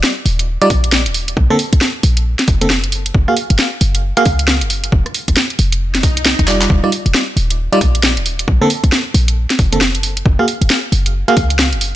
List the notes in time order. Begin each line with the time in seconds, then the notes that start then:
0.03 snare
0.26 D#1, open hi-hat
0.39 closed hi-hat
0.62 G3 D#4 F4 D5, closed hi-hat
0.70 A#1, kick, open hi-hat
0.84 closed hi-hat
0.92 snare
1.06 D#1, closed hi-hat
1.14 open hi-hat
1.28 closed hi-hat
1.37 A#1, kick
1.50 D3 A#3 C4 A4, cross-stick
1.59 open hi-hat
1.73 A#1, kick, cross-stick, closed hi-hat
1.81 snare
2.03 A#1, open hi-hat
2.17 closed hi-hat
2.39 snare, closed hi-hat
2.48 F1, kick, open hi-hat
2.61 D3 A#3 C4 A4, closed hi-hat
2.70 snare
2.84 F#1, closed hi-hat
2.92 open hi-hat
3.06 closed hi-hat
3.14 F#1, kick
3.28 A#3 F#4 G#4 F5, cross-stick
3.37 open hi-hat
3.50 F#1, closed hi-hat
3.59 snare
3.81 F#1, open hi-hat
3.95 closed hi-hat
4.17 A#3 F#4 G#4 F5, closed hi-hat
4.25 C#2, kick, open hi-hat
4.39 closed hi-hat
4.48 snare
4.61 F#1, closed hi-hat
4.70 open hi-hat
4.84 closed hi-hat
4.92 F1, kick
5.06 cross-stick, closed hi-hat
5.14 open hi-hat
5.28 F1, kick, cross-stick, closed hi-hat
5.37 snare
5.50 closed hi-hat
5.59 F1, open hi-hat
5.72 closed hi-hat
5.81 swell
5.95 snare, closed hi-hat
6.03 C2, kick, open hi-hat
6.17 closed hi-hat
6.26 snare
6.39 F1, kick, closed hi-hat
6.48 G3 D#4 F4 D5, clap, open hi-hat
6.61 clap, closed hi-hat
6.70 D#1, kick
6.84 G3 D#4 F4 D5, cross-stick
6.92 open hi-hat
7.06 D#1, closed hi-hat
7.14 snare
7.36 D#1, open hi-hat
7.50 closed hi-hat
7.72 G3 D#4 F4 D5, closed hi-hat
7.81 A#1, kick, open hi-hat
7.95 closed hi-hat
8.03 snare
8.17 D#1, closed hi-hat
8.26 open hi-hat
8.39 closed hi-hat
8.48 A#1, kick
8.62 D3 A#3 C4 A4, cross-stick
8.70 open hi-hat
8.84 A#1, kick, cross-stick, closed hi-hat
8.92 snare
9.14 A#1, open hi-hat
9.28 closed hi-hat
9.50 snare, closed hi-hat
9.59 F1, kick, open hi-hat
9.72 D3 A#3 C4 A4, closed hi-hat
9.81 snare
9.95 F#1, closed hi-hat
10.03 open hi-hat
10.17 closed hi-hat
10.26 F#1, kick
10.39 A#3 F#4 G#4 F5, cross-stick
10.48 open hi-hat
10.61 F#1, closed hi-hat
10.70 snare
10.92 F#1, open hi-hat
11.06 closed hi-hat
11.28 A#3 F#4 G#4 F5, closed hi-hat
11.37 C#2, kick, open hi-hat
11.50 closed hi-hat
11.59 snare
11.72 F#1, closed hi-hat
11.81 open hi-hat